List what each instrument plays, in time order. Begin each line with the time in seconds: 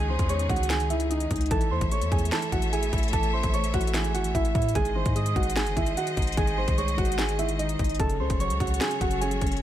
Already playing: 808-style bass C#2, string section C#3 C#4 D#4 G#4, grand piano D#3 G#3 D#4, downlifter
0.09 grand piano D#3, synth keys C5 C6
0.19 808-style bass E2, kick, closed hi-hat
0.29 grand piano G#3, synth keys C#5 C#6, closed hi-hat
0.39 closed hi-hat
0.49 808-style bass C#2, grand piano D#3, synth keys F#4 F#5, kick, closed hi-hat
0.56 closed hi-hat
0.63 closed hi-hat
0.70 grand piano D#3, synth keys G#4 G#5, finger snap, snare, closed hi-hat
0.80 closed hi-hat
0.90 grand piano D#3, synth keys E4 E5, closed hi-hat
1.00 closed hi-hat
1.10 grand piano D#4, synth keys D#4 D#5, closed hi-hat
1.20 closed hi-hat
1.30 808-style bass C#2, grand piano D#4, kick, closed hi-hat
1.36 closed hi-hat
1.41 closed hi-hat
1.46 closed hi-hat
1.51 808-style bass A1, grand piano E3, string section A3 A4 C#5 E5, synth keys A4 A5, kick, closed hi-hat
1.61 closed hi-hat
1.71 808-style bass E2, grand piano E3, synth keys C5 C6
1.81 808-style bass A1, kick, closed hi-hat
1.92 grand piano A3, synth keys C#5 C#6, closed hi-hat
2.02 808-style bass E2, closed hi-hat
2.11 808-style bass E2, grand piano E3, synth keys G#4 G#5, kick, closed hi-hat
2.19 closed hi-hat
2.25 closed hi-hat
2.32 grand piano E3, synth keys A4 A5, finger snap, snare, closed hi-hat
2.42 closed hi-hat
2.52 808-style bass A1, grand piano E3, synth keys F#4 F#5, kick, closed hi-hat
2.62 closed hi-hat
2.73 grand piano E4, synth keys G#4 G#5, closed hi-hat
2.83 closed hi-hat
2.93 808-style bass A1, grand piano E4, kick, closed hi-hat
2.98 closed hi-hat
3.03 closed hi-hat
3.08 closed hi-hat
3.13 808-style bass A1, grand piano E3, synth keys A4 A5, kick, closed hi-hat
3.23 closed hi-hat
3.33 grand piano E3, synth keys C5 C6
3.43 808-style bass A1, kick, closed hi-hat
3.53 grand piano A3, synth keys C#5 C#6, closed hi-hat
3.64 closed hi-hat
3.74 808-style bass A1, grand piano E3, synth keys F#4 F#5, kick, closed hi-hat, open hi-hat
3.81 closed hi-hat
3.87 closed hi-hat
3.94 grand piano E3, synth keys G#4 G#5, finger snap, snare, closed hi-hat
4.04 closed hi-hat
4.14 808-style bass G#1, grand piano E3, synth keys F#4 F#5, closed hi-hat
4.24 808-style bass A1, closed hi-hat
4.34 808-style bass A1, grand piano E4, synth keys E4 E5, kick, closed hi-hat
4.45 closed hi-hat
4.55 808-style bass A2, grand piano E4, kick, closed hi-hat
4.62 closed hi-hat
4.69 closed hi-hat
4.75 808-style bass G#1, grand piano D#3, string section G#3 G#4 C5 D#5, synth keys G#4 G#5, kick, closed hi-hat
4.85 closed hi-hat
4.95 grand piano D#3, synth keys C5 C6
5.06 808-style bass G#2, kick, closed hi-hat
5.15 grand piano G#3, synth keys D#5 D#6, closed hi-hat
5.26 closed hi-hat
5.36 808-style bass G#1, grand piano D#3, synth keys F#4 F#5, kick, closed hi-hat
5.43 closed hi-hat
5.50 closed hi-hat
5.56 grand piano D#3, synth keys G#4 G#5, finger snap, snare, closed hi-hat
5.66 808-style bass F#1, closed hi-hat
5.77 808-style bass G#1, grand piano D#3, synth keys E4 E5, kick, closed hi-hat
5.86 closed hi-hat
5.97 grand piano D#4, synth keys F#4 F#5, closed hi-hat
6.07 closed hi-hat
6.17 808-style bass G#1, grand piano D#4, kick, closed hi-hat
6.22 closed hi-hat
6.27 closed hi-hat
6.32 closed hi-hat
6.37 808-style bass G#1, grand piano D#3, synth keys G#4 G#5, kick, closed hi-hat
6.47 closed hi-hat
6.58 grand piano D#3, synth keys C5 C6
6.68 808-style bass C2, kick, closed hi-hat
6.78 grand piano G#3, synth keys C#5 C#6, closed hi-hat
6.88 closed hi-hat
6.98 808-style bass G#1, grand piano D#3, synth keys F#4 F#5, kick, closed hi-hat
7.05 closed hi-hat
7.12 closed hi-hat
7.18 grand piano D#3, synth keys G#4 G#5, finger snap, snare, closed hi-hat
7.29 closed hi-hat
7.39 grand piano D#3, synth keys E4 E5, closed hi-hat
7.49 closed hi-hat
7.59 grand piano D#4, synth keys D#4 D#5, closed hi-hat
7.69 closed hi-hat
7.79 808-style bass G#1, grand piano D#4, kick, closed hi-hat
7.84 closed hi-hat
7.89 closed hi-hat
7.95 closed hi-hat
7.99 808-style bass F#1, grand piano C#3, string section F#3 F#4 A4 C#5, synth keys A4 A5, kick, closed hi-hat
8.10 closed hi-hat
8.20 808-style bass C#2, grand piano C#3, synth keys C5 C6
8.30 808-style bass F#1, kick, closed hi-hat
8.40 grand piano F#3, synth keys C#5 C#6, closed hi-hat
8.50 808-style bass C#2, closed hi-hat
8.60 808-style bass C#2, grand piano C#3, synth keys F#4 F#5, kick, closed hi-hat
8.67 closed hi-hat
8.74 closed hi-hat
8.81 grand piano C#3, synth keys G#4 G#5, finger snap, snare, closed hi-hat
8.91 closed hi-hat
9.01 808-style bass F#1, grand piano C#3, synth keys F#4 F#5, kick, closed hi-hat
9.11 closed hi-hat
9.21 grand piano C#4, synth keys G#4 G#5, closed hi-hat
9.31 closed hi-hat
9.41 808-style bass F#1, grand piano C#4, kick, closed hi-hat
9.47 closed hi-hat
9.52 closed hi-hat
9.57 closed hi-hat